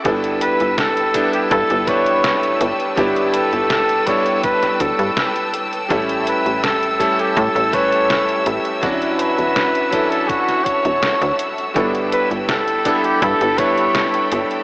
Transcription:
0.04 G1 G3 B3 D4 E4 A4 B4 G5 A5 E6, kick, closed hi-hat
0.24 closed hi-hat
0.41 B4, closed hi-hat
0.60 G1, closed hi-hat
0.78 A4, snare, closed hi-hat
0.97 closed hi-hat
1.14 G3 B3 D4 E4 A4, kick, closed hi-hat
1.33 G4, closed hi-hat
1.51 G2 A4, kick, closed hi-hat
1.70 G1, closed hi-hat
1.86 G3 B3 D4 E4 B4 C#5, kick, closed hi-hat
2.06 closed hi-hat
2.24 snare, closed hi-hat
2.43 closed hi-hat
2.61 G1, closed hi-hat
2.80 closed hi-hat
2.96 G1 G3 B3 D4 E4 G4, kick, closed hi-hat
3.16 closed hi-hat
3.34 A4, closed hi-hat
3.53 G1, closed hi-hat
3.70 snare, closed hi-hat
3.89 closed hi-hat
4.06 G3 B3 D4 E4 A4 C#5, kick, closed hi-hat
4.26 closed hi-hat
4.43 B4, kick, closed hi-hat
4.63 snare, closed hi-hat
4.80 D2 A4, kick, closed hi-hat
4.99 G2, closed hi-hat
5.17 snare, closed hi-hat
5.36 closed hi-hat
5.54 closed hi-hat
5.73 closed hi-hat
5.89 A1 G3 A3 C#4 E4 A4 E5, kick, closed hi-hat
6.09 closed hi-hat
6.27 B4, closed hi-hat
6.46 A1, closed hi-hat
6.64 A4, snare, closed hi-hat
6.83 closed hi-hat
6.99 G3 A3 C#4 E4 A4, kick, closed hi-hat
7.19 G4, closed hi-hat
7.37 A2 A4, kick, closed hi-hat
7.55 A1, closed hi-hat
7.72 G3 A3 C#4 E4 B4 C#5, kick, closed hi-hat
7.92 closed hi-hat
8.10 snare, closed hi-hat
8.29 closed hi-hat
8.46 A1, closed hi-hat
8.65 closed hi-hat
8.81 D1 F#3 C#4 D4 E4 F#4 F#5 A5, kick, closed hi-hat
9.02 closed hi-hat
9.19 B4, closed hi-hat
9.38 D1, closed hi-hat
9.56 snare, closed hi-hat
9.75 closed hi-hat
9.91 F#3 C#4 D4 E4 A4, kick, closed hi-hat
10.10 A4, closed hi-hat
10.28 F#4, kick, closed hi-hat
10.48 snare, closed hi-hat
10.64 C#5, kick, closed hi-hat
10.85 D1, closed hi-hat
11.03 snare, closed hi-hat
11.21 D2, closed hi-hat
11.39 closed hi-hat
11.58 closed hi-hat
11.74 G1 G3 B3 D4 E4 A4 G5 B5, kick, closed hi-hat
11.95 closed hi-hat
12.12 B4, closed hi-hat
12.31 G1, closed hi-hat
12.49 A4, snare, closed hi-hat
12.68 closed hi-hat
12.85 G3 B3 D4 E4 A4, kick, closed hi-hat
13.04 G4, closed hi-hat
13.22 G2 A4, kick, closed hi-hat
13.41 G1, closed hi-hat
13.57 G3 B3 D4 E4 B4 C#5, kick, closed hi-hat
13.78 closed hi-hat
13.95 snare, closed hi-hat
14.14 closed hi-hat
14.32 G1, closed hi-hat
14.51 closed hi-hat

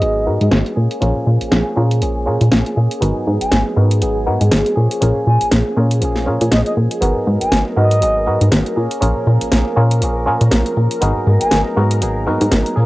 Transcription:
Already playing: B3 D#4 F#4 G#4 A#4 D#5 G#5
0.01 G#1 F#3 B3 D#4 G#4, closed hi-hat
0.26 G#2 B3 D#4 F#4 A#4
0.41 G#2, closed hi-hat
0.51 G#1, snare, closed hi-hat
0.66 closed hi-hat
0.76 A#2 A#3 C#4 G#4
0.91 closed hi-hat
1.01 A#1 F3 A#3 C#4 F4 G#4 A#4, closed hi-hat
1.27 A#2
1.41 A#1, closed hi-hat
1.51 A#1 F3 A#3 C#4 G#4, snare, closed hi-hat
1.76 A#2 C#4 F4 G#4 A#4
1.91 closed hi-hat
2.01 A#1 F3 A#3 C#4 G#4, closed hi-hat
2.26 A#2 C#4 F4 G#4 A#4
2.41 A#2, closed hi-hat
2.52 A#1, snare, closed hi-hat
2.66 closed hi-hat
2.76 A#2 A#3 C#4 G#4
2.91 closed hi-hat
3.01 G#1 F#3 B3 D#4 F#4 A#4, closed hi-hat
3.05 G#4
3.16 G#2
3.27 G#2
3.41 G#1 G#5, closed hi-hat
3.52 G#1, snare, closed hi-hat
3.76 G#2 B3 D#4 F#4 A#4
3.91 closed hi-hat
4.01 G#1 F#3 B3 D#4 G#4, closed hi-hat
4.26 G#2 B3 D#4 F#4 A#4
4.41 G#2, closed hi-hat
4.52 G#1, snare, closed hi-hat
4.66 closed hi-hat
4.76 A#2 A#3 C#4 G#4
4.80 F3
4.91 closed hi-hat
5.01 A#1 C#4 F4 G#4 A#4, closed hi-hat
5.27 A#2 G#5
5.41 A#1, closed hi-hat
5.51 A#1, snare, closed hi-hat
5.77 A#2 C#4 F4 G#4 A#4
5.91 closed hi-hat
6.01 A#1 F3 A#3 C#4, closed hi-hat
6.05 G#4
6.16 snare
6.26 A#2 C#4 F4 G#4 A#4
6.41 A#2, closed hi-hat
6.52 A#1 D#5, snare, closed hi-hat
6.66 D#5, closed hi-hat
6.77 A#2
6.91 closed hi-hat
7.01 G#1 F#3 B3 D#4 F#4 A#4 A#5, closed hi-hat
7.05 G#4
7.16 G#2, tambourine
7.26 G#2, tambourine
7.41 G#1 G#5, closed hi-hat
7.52 G#1, snare, closed hi-hat
7.76 G#2 B3 D#4 F#4 A#4 D#5, tambourine
7.91 closed hi-hat
8.01 G#1 F#3 B3 D#4 G#4, closed hi-hat
8.16 tambourine
8.26 G#2 B3 D#4 F#4 A#4, tambourine
8.41 G#2, closed hi-hat
8.52 G#1, snare, closed hi-hat
8.66 closed hi-hat
8.76 A#2 A#3 C#4 G#4, tambourine
8.91 closed hi-hat
9.01 A#1 F3 A#3 C#4 F4 G#4 A#4, closed hi-hat, tambourine
9.16 A#2, tambourine
9.27 A#2, tambourine
9.41 A#1, closed hi-hat
9.51 A#1 F3 A#3 C#4 G#4, snare, closed hi-hat
9.76 A#2 C#4 F4 G#4 A#4, tambourine
9.91 closed hi-hat
10.01 A#1 F3 A#3 C#4, closed hi-hat, tambourine
10.05 G#4
10.16 tambourine
10.26 A#2 C#4 F4 G#4 A#4, tambourine
10.41 A#2, closed hi-hat
10.51 A#1, snare, closed hi-hat
10.66 closed hi-hat
10.76 A#2, tambourine
10.91 closed hi-hat, tambourine
11.01 G#1 F#3 B3 D#4 F#4 G#4 A#4, closed hi-hat
11.16 tambourine
11.27 G#2, tambourine
11.41 G#1 G#5, closed hi-hat
11.51 G#1 F#3 B3 D#4 G#4, snare, closed hi-hat
11.77 G#2 B3 D#4 F#4 A#4, tambourine
11.91 closed hi-hat
12.01 G#1 F#3 B3 D#4 G#4, closed hi-hat
12.17 tambourine
12.27 G#2 B3 D#4 F#4 A#4, tambourine
12.41 G#2, closed hi-hat
12.52 G#1, snare, closed hi-hat
12.66 closed hi-hat
12.76 A#2 A#3 C#4 G#4, tambourine
12.80 F3

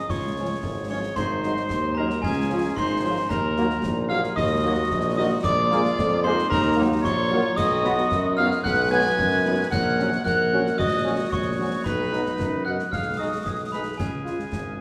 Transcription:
Already playing: D#5
0.10 C#2 F4 C#5 C#6, concert bass drum, snare
0.37 F3 G#3 C#4
0.63 G#1, concert bass drum, snare
0.89 F3 G#3 C#4 F4 C#5 C#6
1.16 G#1 D#4 C5 C6, concert bass drum, snare, crash
1.43 F#3 G#3 D#4, snare
1.57 snare
1.70 D#2, concert bass drum, snare
1.95 F#3 G#3 C#4 D#4 A#4 A#5
1.99 F#3
2.10 snare
2.22 C#2 C#4 G#4 G#5, concert bass drum, snare
2.49 F3 G#3 C#4 F4
2.76 G#1 D#4 C5 C6, concert bass drum, snare
3.03 F3 G#3 C#4 F4
3.29 D#2 D#4 A#4 A#5, concert bass drum, snare, crash
3.57 F#3 A#3 D#4 F#4, snare
3.70 snare
3.83 A#1, concert bass drum, snare
4.09 F#3 A#3 D#4 F#4 G#4 F5 F6
4.24 snare
4.36 D#2 F#4 D#5 D#6, concert bass drum, snare
4.63 F#3 A#3 D#4 F#4
4.90 A#1, concert bass drum, snare
5.16 F#3 A#3 D#4 F#4 D#5 D#6
5.43 A#1 F4 D5 D6, concert bass drum, snare, crash
5.71 G#3 A#3 F4 G#4, snare
5.85 snare
5.97 F2, concert bass drum, snare
6.23 G#3 A#3 D#4 F4 G#4 C5 C6
6.39 snare
6.50 D#2 D#4 A#4 A#5, concert bass drum, snare
6.76 F#3 A#3 D#4 F#4
7.02 A#1 F4 C#5 C#6, concert bass drum, snare
7.30 F#3 A#3 D#4 F#4
7.56 B1 F#4 D#5 D#6, concert bass drum, snare, crash
7.83 F#3 B3 D#4 F#4, snare
7.98 snare
8.11 F#2, concert bass drum, snare
8.37 F#3 B3 D#4 F#4 G#4 F5 F6
8.51 snare
8.63 B1 B4 F#5 F#6, concert bass drum, snare
8.90 F#3 B3 D#4 F#4 B4 G#5 G#6
9.18 F#2, concert bass drum, snare
9.45 F#3 B3 D#4 F#4
9.71 A#1 A#4 F#5 F#6, concert bass drum, snare, crash
9.99 F#3 C#4 F#4, snare
10.12 snare
10.24 A#1 A#4 F#5 F#6, concert bass drum, snare
10.52 F#3 C#4 F#4
10.67 snare
10.78 A#1 F#4 D#5 D#6, concert bass drum, snare
11.05 F#3 C#4 F#4
11.30 A#1 F#4 C#5 C#6, concert bass drum, snare
11.57 F#3 C#4 F#4
11.84 B1 D#4 B4 B5, concert bass drum, snare, crash
12.11 F#3 B3 D#4 F#4, snare
12.26 snare
12.39 F#2, concert bass drum, snare
12.65 F#3 B3 D#4 F#4 A#4 F#5 F#6
12.79 snare
12.92 B1 G#4 F5 F6, concert bass drum, snare
13.17 G#3 D#4 F#4 G#4 D#5 D#6
13.44 B1 G#4 D#5 D#6, concert bass drum, snare
13.72 G#3 D#4 G#4 B4 B5
13.97 C#2 C#4 G#4 G#5, concert bass drum, snare, crash
14.25 G#3 C#4 F4, snare
14.39 snare
14.52 G#1, concert bass drum, snare

